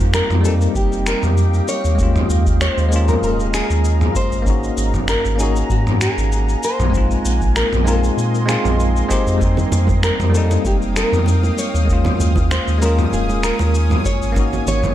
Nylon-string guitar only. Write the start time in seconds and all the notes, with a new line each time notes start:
Already playing: C5
0.15 A#4
0.45 A4
0.76 G4
1.07 A#4
1.69 C#5
2.62 C#5
2.73 C5
3.09 A#4
3.24 G#4
3.54 G#4
4.16 C5
5.09 A#4
5.40 G#4
5.71 F#4
6.02 G#4
6.64 C5
7.56 A#4
7.88 G#4
8.49 G#4
9.11 C5
10.04 A#4
10.35 A4
10.66 G4
10.97 A#4
11.59 C#5
12.52 C5
12.82 A#4
13.13 G#4
13.44 A#4
14.06 C#5
14.68 C#5